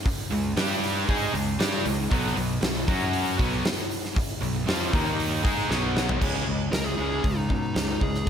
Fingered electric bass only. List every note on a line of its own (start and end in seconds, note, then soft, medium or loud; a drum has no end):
0.06 muted fingered electric bass stroke soft
0.31 0.55 C#2 medium
0.56 1.04 G2 loud
1.09 1.32 G#2 medium
1.34 1.58 C#2 medium
1.60 1.83 G2 medium
1.85 2.09 C#2 medium
2.11 2.35 B1 loud
2.37 2.60 B1 medium
2.62 2.86 B1 medium
2.88 3.36 F#2 medium
3.39 3.63 B1 medium
4.17 muted fingered electric bass stroke soft
4.42 4.66 B1 medium
4.67 4.91 F2 medium
4.93 5.41 D#2 loud
5.45 5.68 G#2 medium
5.70 6.18 B1 medium
6.21 6.45 C#2 medium
6.47 6.71 C#2 medium
6.73 6.96 C#2 medium
6.99 7.22 C#2 medium
7.24 7.48 C#2 medium
7.50 7.73 B2 medium
7.76 7.99 C#2 medium
8.01 8.25 C#2 medium